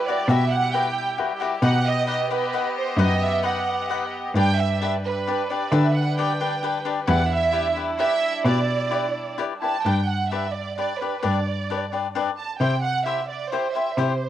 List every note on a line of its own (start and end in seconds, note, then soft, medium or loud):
0.00 1.61 G3 medium
0.00 1.60 E4 medium
0.00 4.32 G4 medium
0.08 0.20 F#4 soft
0.08 0.21 G4 soft
0.08 0.21 B4 medium
0.08 0.29 D5 medium
0.08 0.21 E5 soft
0.28 1.16 B2 loud
0.28 0.42 F#4 medium
0.28 0.42 G4 medium
0.28 0.43 B4 medium
0.28 0.52 E5 loud
0.28 0.43 E5 medium
0.51 0.74 F#5 loud
0.73 0.87 F#4 medium
0.73 0.87 G4 medium
0.73 0.87 B4 medium
0.73 0.88 E5 medium
0.73 1.41 G5 medium
1.18 1.32 F#4 medium
1.18 1.32 G4 medium
1.18 1.32 B4 medium
1.18 1.32 E5 medium
1.40 1.54 F#4 medium
1.40 1.54 G4 medium
1.40 1.55 B4 medium
1.40 1.55 E5 medium
1.62 2.51 B2 loud
1.62 4.33 B3 medium
1.62 1.76 D#4 medium
1.62 1.76 B4 medium
1.62 4.33 D#5 medium
1.62 1.77 D#5 medium
1.62 1.84 F#5 loud
1.62 1.77 F#5 medium
1.87 2.07 D#5 loud
2.07 2.21 D#4 medium
2.07 2.21 B4 medium
2.07 2.29 D#5 medium
2.07 2.21 D#5 medium
2.07 2.22 F#5 medium
2.30 2.44 D#4 soft
2.30 2.44 B4 medium
2.30 2.73 B4 medium
2.30 2.44 D#5 soft
2.30 2.44 F#5 medium
2.53 2.67 D#4 medium
2.53 2.67 B4 medium
2.53 2.67 D#5 medium
2.53 2.67 F#5 medium
2.78 2.99 C5 medium
2.97 4.34 F#2 loud
2.97 3.12 D#4 medium
2.97 3.12 B4 medium
2.97 3.20 D#5 loud
2.97 3.12 D#5 medium
2.97 3.12 F#5 medium
3.21 3.44 E5 loud
3.43 3.57 D#4 medium
3.43 3.57 B4 medium
3.43 3.57 D#5 soft
3.43 3.58 F#5 medium
3.43 4.10 F#5 medium
3.89 4.04 D#4 medium
3.89 4.04 B4 soft
3.89 4.04 D#5 medium
3.89 4.04 F#5 medium
4.35 5.24 G2 medium
4.35 9.81 G3 medium
4.35 4.50 D4 medium
4.35 7.06 D4 medium
4.35 4.50 G4 medium
4.35 4.50 B4 medium
4.35 7.06 B4 medium
4.35 4.50 D5 medium
4.39 4.59 G5 loud
4.58 4.81 E5 loud
4.81 4.95 D4 medium
4.81 4.96 G4 medium
4.81 4.96 B4 medium
4.81 4.96 D5 medium
4.81 4.93 E5 medium
5.06 5.48 B4 medium
5.27 5.41 D4 medium
5.27 5.41 G4 medium
5.27 5.42 B4 medium
5.27 5.42 D5 medium
5.50 5.64 D4 soft
5.50 5.64 G4 soft
5.50 5.64 B4 medium
5.50 5.72 D5 medium
5.50 5.65 D5 medium
5.72 7.07 D3 loud
5.72 5.86 D4 medium
5.72 5.86 G4 medium
5.72 5.87 B4 medium
5.72 5.87 D5 medium
5.72 5.95 E5 medium
5.95 6.18 F#5 loud
6.18 6.31 D4 medium
6.18 6.32 G4 medium
6.18 6.32 B4 medium
6.18 6.32 D5 medium
6.18 6.82 G5 medium
6.40 6.54 D4 soft
6.40 6.54 G4 medium
6.40 6.54 B4 medium
6.40 6.54 D5 medium
6.63 6.77 D4 medium
6.63 6.77 G4 medium
6.63 6.77 B4 medium
6.63 6.77 D5 medium
6.85 6.99 D4 medium
6.85 6.99 G4 medium
6.85 6.99 B4 medium
6.85 6.99 D5 medium
7.07 7.97 E2 loud
7.07 9.82 D4 medium
7.07 7.21 E4 medium
7.07 9.82 E4 loud
7.07 7.21 G4 medium
7.07 7.22 B4 medium
7.07 7.22 D5 medium
7.07 7.29 F#5 loud
7.30 7.76 E5 loud
7.53 7.67 E4 medium
7.53 7.67 G4 medium
7.53 7.67 B4 medium
7.53 7.67 D5 medium
7.76 7.90 E4 soft
7.76 7.90 G4 soft
7.76 7.90 B4 soft
7.76 7.90 D5 medium
7.99 8.13 E4 medium
7.99 8.13 G4 medium
7.99 8.13 B4 medium
7.99 8.13 D5 medium
7.99 8.42 E5 loud
8.45 9.36 B2 medium
8.45 8.59 E4 medium
8.45 8.59 G4 medium
8.45 8.59 B4 medium
8.45 8.59 D5 medium
8.45 9.35 D5 medium
8.91 9.05 E4 medium
8.91 9.05 G4 medium
8.91 9.05 B4 medium
8.91 9.05 D5 medium
9.38 9.52 E4 medium
9.38 9.52 G4 medium
9.38 9.53 B4 medium
9.38 9.53 D5 medium
9.61 9.75 E4 medium
9.61 9.76 G4 medium
9.61 9.76 B4 medium
9.61 9.76 D5 medium
9.61 9.83 A5 medium
9.84 10.75 G2 medium
9.84 9.99 D4 medium
9.84 9.99 G4 medium
9.84 10.00 B4 medium
9.84 10.00 D5 medium
9.84 10.08 G5 medium
10.08 10.31 F#5 medium
10.31 10.46 D4 soft
10.31 10.46 G4 medium
10.31 10.46 B4 medium
10.31 10.46 D5 medium
10.31 10.53 E5 medium
10.54 10.78 D5 medium
10.78 10.92 D4 soft
10.78 10.92 G4 soft
10.78 10.92 B4 medium
10.78 11.00 D5 medium
10.78 10.93 D5 medium
10.99 11.15 D4 soft
10.99 11.15 G4 soft
10.99 11.23 B4 medium
10.99 11.15 B4 soft
10.99 11.16 D5 soft
11.23 12.13 G2 medium
11.23 11.37 D4 medium
11.23 11.37 G4 medium
11.23 11.38 B4 medium
11.23 11.38 D5 medium
11.23 11.93 D5 medium
11.70 11.84 D4 medium
11.70 11.84 G4 soft
11.70 11.84 B4 medium
11.70 11.85 D5 medium
11.92 12.06 D4 soft
11.92 12.06 G4 medium
11.92 12.07 B4 medium
11.92 12.07 D5 medium
12.15 12.29 D4 medium
12.15 12.29 G4 medium
12.15 12.30 B4 medium
12.15 12.30 D5 medium
12.38 12.59 A5 medium
12.60 13.50 C3 medium
12.60 12.75 E4 medium
12.60 12.75 G4 medium
12.60 12.75 C5 medium
12.60 12.75 E5 medium
12.60 12.82 G5 medium
12.83 13.05 F#5 loud
13.06 13.20 E4 medium
13.06 13.20 G4 medium
13.06 13.20 C5 medium
13.06 13.28 E5 medium
13.06 13.21 E5 medium
13.30 13.51 D5 medium
13.51 13.66 E4 medium
13.51 13.66 G4 medium
13.51 13.75 C5 medium
13.51 13.67 C5 medium
13.51 13.67 E5 medium
13.75 13.89 E4 soft
13.75 13.89 G4 soft
13.75 13.89 C5 soft
13.75 13.98 E5 medium
13.75 13.90 E5 medium
13.97 14.29 C3 medium
13.97 14.12 E4 medium
13.97 14.12 G4 medium
13.97 14.29 C5 medium
13.97 14.12 C5 medium
13.97 14.13 E5 medium